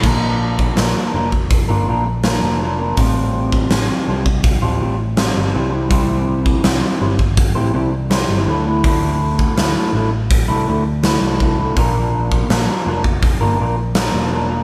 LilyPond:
<<
  \new Staff \with { instrumentName = "Clean electric guitar" } { \time 4/4 \key bes \lydian \tempo 4 = 82 <bes, f bes d' f' bes'>4 <bes, f bes d' f' bes'>16 <bes d' f' bes'>16 <bes d' f' bes'>8. <bes d' f' bes'>16 <bes d' f' bes'>8 <bes, f bes d' f' bes'>8 <bes d' f' bes'>16 <bes d' f' bes'>16 | <f, c f g c' f'>4 <f, c f g c' f'>16 <f g c' f'>16 <f g c' f'>8. <f g c' f'>16 <f g c' f'>8 <f, c f g c' f'>8 <c g c' e' g' c''>16 <c' e' g' c''>16 | <c g c' e' g' c''>4 <c g c' e' g' c''>16 <c' e' g' c''>16 <c' e' g' c''>8. <c' e' g' c''>16 <c' e' g' c''>8 <c g c' e' g' c''>8 <d, a, d a e'>16 <d a e'>16 | <d, a, d a e'>4 <d, a, d a e'>16 <d a e'>16 <a, d a e'>8. <d a e'>16 <a, d a e'>8 <d, a, d a e'>8 <a, d a e'>16 <d a e'>16 |
<bes, f bes d' f' bes'>4 <bes, f bes d' f' bes'>16 <bes d' f' bes'>16 <bes d' f' bes'>8. <bes d' f' bes'>16 <bes d' f' bes'>8 <bes, f bes d' f' bes'>8 <bes d' f' bes'>16 <bes d' f' bes'>16 | }
  \new Staff \with { instrumentName = "Picked electric bass" } { \clef bass \time 4/4 \key bes \lydian bes,,4 bes,,16 r16 f,,8. g,,16 bes,,8. f,,8. | a,,4 a,,16 r16 c,8. d,,16 a,,8. g,,16 c,8~ | c,4 c,16 r16 g,,8. a,,16 c,8. g,,16 d,8~ | d,4 d,16 r16 a,,8. c,16 d,8. c,8. |
bes,,4 bes,,16 r16 f,,8. g,,16 bes,,8. e,,8. | }
  \new DrumStaff \with { instrumentName = "Drums" } \drummode { \time 4/4 <cymc bd>8. bd16 <hho sn>8. bd16 <hho bd>4 <hho sn>4 | <hho bd>8. bd16 <hho sn>8. bd16 <hho bd>4 <hho sn>4 | <hho bd>8. bd16 <hho sn>8. bd16 <hho bd>4 <hho sn>4 | <hho bd>8. bd16 <hho sn>4 <hho bd>4 <hho sn>8 bd8 |
<hho bd>8. bd16 <hho sn>8. bd16 <hho bd>4 <hho sn>4 | }
>>